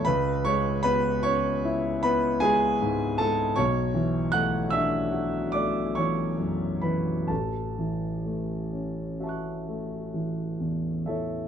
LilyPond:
<<
  \new Staff \with { instrumentName = "Grand piano" } { \time 9/8 \key a \major \tempo 4. = 48 << { <b' b''>8 <cis'' cis'''>8 <b' b''>8 <cis'' cis'''>4 <b' b''>8 <gis' gis''>4 <a' a''>8 | <cis'' cis'''>4 <fis'' fis'''>8 <e'' e'''>4 <d'' d'''>8 <cis'' cis'''>4 <b' b''>8 | <a' a''>2. r4 <a' cis'' e''>8 | } \\ { r1 r8 | r1 r8 | r2 <e'' a'' cis''' fis'''>2~ <e'' a'' cis''' fis'''>8 | } >> }
  \new Staff \with { instrumentName = "Grand piano" } { \clef bass \time 9/8 \key a \major cis,8 gis8 b8 cis'8 e'8 b8 gis8 gis,8 gis8 | b,,8 e8 a8 d'8 fis'8 a8 e8 fis,8 e8 | a,,8 e8 a8 cis'8 fis'8 a8 e8 e,8 e8 | }
>>